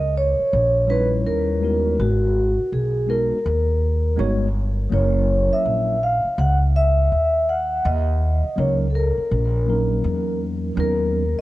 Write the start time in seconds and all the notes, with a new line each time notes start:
Already playing: C#2 D#5
0.18 C#5
0.40 muted upright bass stroke
0.53 A#1
0.87 G3 C#4 D#4 E4 B4 C#5
1.26 D#2 A#4
1.61 G#3 B3 D#4 F#4 A#4
1.99 G#1 F#4
2.59 muted upright bass stroke
2.73 B1 G#4
3.07 G#3 B3 D#4 F#4 A#4
3.32 muted upright bass stroke
3.46 D#2
4.16 G1 G#3 B3 D#4 F#4 C#5
4.90 F#1 F#3 A#3 C#4 E4 A#4
4.94 C#5
5.51 E5, muted upright bass stroke
5.65 A#1
6.03 F5
6.25 muted upright bass stroke
6.38 C#2 F#5
6.76 E5
7.12 D#2
7.49 F#5
7.85 D#2 D#5
8.44 muted upright bass stroke
8.56 C#2 F#3 A#3 C#4 D#4 A#4 C#5
8.90 A4
8.95 A#4
9.17 muted upright bass stroke
9.31 A#1
9.66 F#3 A#3 C#4 D#4 A#4
10.04 E2
10.75 D#2 F#3 B3 C#4 D#4 A#4
10.80 A#4
11.37 muted upright bass stroke